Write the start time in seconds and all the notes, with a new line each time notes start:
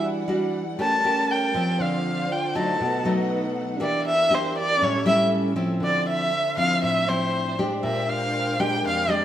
Already playing: E3 G3 D4 E4 F#4 D5 F#5
0.28 G3 D4 F#4
0.76 A3 C#4 G4 A#4 C#5 A5
0.80 C#5 A5
1.04 C#4 G4 A#4
1.31 G5
1.54 F3 C4
1.77 D3 F4 C5 D5 F5
1.82 F5
2.32 G5
2.55 F#3 A3 D#4 A5
2.76 D#4 A4 B4 F#5
2.80 B2 B4 F#5
3.05 F#3 A3 D#4
3.76 E3 A#3 D4 G4 A#4 E5
3.80 D4 G4 A#4 D5 E5
4.07 E5
4.30 A#3 D4 G4
4.34 C5
4.58 D5
4.77 C#4 G4 A4
4.81 A2 G3 C#4 E4 A4 C#5 E5
5.06 G3 C#4 E4 E5
5.56 F3 C4 E4
5.80 D3 D4 C5 D5 E5
6.07 E5
6.57 F3 C4 E4 F5
6.83 A2 E5
7.08 F3 C4 E4 C5
7.59 G#3 D4 G4
7.83 A#2 A#4 E5 G5
8.09 F5
8.59 G#3 D4 G4 G5
8.84 F2 F5
9.08 G#3 D4 G4 D5
9.12 D5